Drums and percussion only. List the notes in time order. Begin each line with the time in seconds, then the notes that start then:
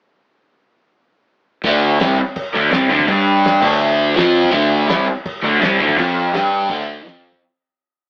1.63 kick, crash
2.00 snare, crash
2.36 kick, crash
2.71 snare, crash
2.99 kick
3.08 kick, crash
3.45 snare, crash
3.62 kick, crash
3.81 crash
4.17 snare, crash
4.44 kick
4.53 kick, crash
4.89 snare, crash
5.26 kick, crash
5.62 snare, crash
5.89 kick
5.98 kick, crash
6.34 snare, crash
6.70 kick, crash
7.06 snare, crash
7.32 kick